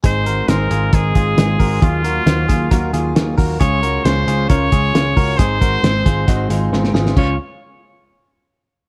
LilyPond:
<<
  \new Staff \with { instrumentName = "Trumpet" } { \time 4/4 \key des \major \tempo 4 = 135 c''4 bes'4 aes'2 | f'2. r4 | des''4 c''4 des''2 | c''2. r4 |
des''8 r2. r8 | }
  \new Staff \with { instrumentName = "Clean electric guitar" } { \time 4/4 \key des \major <ees' aes'>8 <ges' bes'>8 <aes' c''>8 <f' aes'>8 <ees' bes'>8 <f' aes'>4 <ges' bes'>8 | <f' aes'>8 <ges' bes'>8 <ges' c''>8 <f' aes'>8 <ges' bes'>8 <f' aes'>4 <ges' bes'>8 | <f' aes'>8 <ges' bes'>8 <aes' c''>8 <f' aes'>8 <f' bes'>8 <f' aes'>4 <ges' bes'>8 | <ees' aes'>8 <ges' bes'>8 <aes' c''>8 <f' aes'>8 <ees' ges'>8 <f' aes'>4 <f' aes'>8 |
f'8 r2. r8 | }
  \new Staff \with { instrumentName = "Clean electric guitar" } { \time 4/4 \key des \major <aes, ees aes c' ees'>8 <aes c' ees'>8 <aes, ees aes c' ees'>8 <aes c' ees'>8 <ees aes c' ees'>8 <aes c' ees'>8 <aes, ees aes c' ees'>8 <aes c' ees'>8 | <ees ges bes f'>8 <ges bes f'>8 <ees ges bes f'>8 <ges bes f'>8 <ees ges bes f'>8 <ges bes f'>8 <ees ges bes f'>8 <ges bes f'>8 | <des aes des' f'>8 <aes des' f'>8 <des aes des' f'>8 <aes des' f'>8 <des aes des' f'>8 <aes des' f'>8 <des aes des' f'>8 <aes des' f'>8 | <aes, ees aes c' ees'>8 <aes c' ees'>8 <aes, ees aes c' ees'>8 <aes c' ees'>8 <ees aes c' ees'>8 <aes c' ees'>8 <aes, ees aes c' ees'>8 <aes c' ees'>8 |
<des aes des' f'>8 r2. r8 | }
  \new Staff \with { instrumentName = "Picked electric bass" } { \clef bass \time 4/4 \key des \major aes,,4 aes,,8 aes,,8 aes,,8 aes,,8 aes,,8 aes,,8 | ees,4 ees,8 ees,8 ees,8 ees,8 ees,8 ees,8 | des,4 des,8 des,8 des,8 des,8 des,8 des,8 | aes,,4 aes,,8 aes,,8 aes,,8 aes,,8 aes,,8 aes,,8 |
des,8 r2. r8 | }
  \new DrumStaff \with { instrumentName = "Drums" } \drummode { \time 4/4 <hh bd>8 hh8 <hh sn>8 hh8 <hh bd sn>8 <hh bd>8 <hh sn>8 <hho bd>8 | <hh bd>8 hh8 <hh sn>8 <hh bd>8 <hh bd sn>8 hh8 <hh sn>8 <hho bd>8 | <hh bd>8 hh8 <hh sn>8 hh8 <hh bd sn>8 <hh bd>8 <hh sn>8 <hho bd>8 | <hh bd>8 <hh bd>8 <hh sn>8 <hh bd>8 <hh bd sn>8 hh8 sn16 sn16 sn16 sn16 |
<cymc bd>4 r4 r4 r4 | }
>>